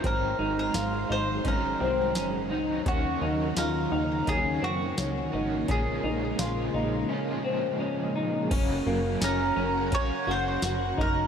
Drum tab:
CC |--------|--------|--------|x-------|
HH |x-x-x-x-|x-x-x-x-|x-x-----|x-x-x-x-|
TB |--------|--x---x-|--x-----|--x---x-|
SD |--o---o-|--o---o-|--o-----|--o---o-|
BD |o---o---|o---o---|o-------|o---o--o|